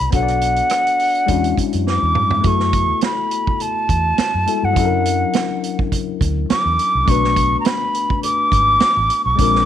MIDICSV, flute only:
0, 0, Header, 1, 2, 480
1, 0, Start_track
1, 0, Tempo, 578592
1, 112, Time_signature, 4, 2, 24, 8
1, 8008, End_track
2, 0, Start_track
2, 0, Title_t, "Flute"
2, 0, Program_c, 0, 73
2, 0, Note_on_c, 0, 83, 85
2, 109, Note_off_c, 0, 83, 0
2, 114, Note_on_c, 0, 78, 80
2, 1309, Note_off_c, 0, 78, 0
2, 1562, Note_on_c, 0, 86, 100
2, 2050, Note_on_c, 0, 85, 89
2, 2063, Note_off_c, 0, 86, 0
2, 2522, Note_off_c, 0, 85, 0
2, 2527, Note_on_c, 0, 83, 82
2, 3002, Note_on_c, 0, 81, 91
2, 3015, Note_off_c, 0, 83, 0
2, 3855, Note_on_c, 0, 78, 77
2, 3868, Note_off_c, 0, 81, 0
2, 4810, Note_off_c, 0, 78, 0
2, 5398, Note_on_c, 0, 86, 97
2, 5884, Note_on_c, 0, 85, 101
2, 5896, Note_off_c, 0, 86, 0
2, 6303, Note_off_c, 0, 85, 0
2, 6308, Note_on_c, 0, 82, 67
2, 6354, Note_on_c, 0, 83, 91
2, 6366, Note_off_c, 0, 82, 0
2, 6828, Note_off_c, 0, 83, 0
2, 6833, Note_on_c, 0, 86, 101
2, 7648, Note_off_c, 0, 86, 0
2, 7673, Note_on_c, 0, 86, 98
2, 8008, Note_off_c, 0, 86, 0
2, 8008, End_track
0, 0, End_of_file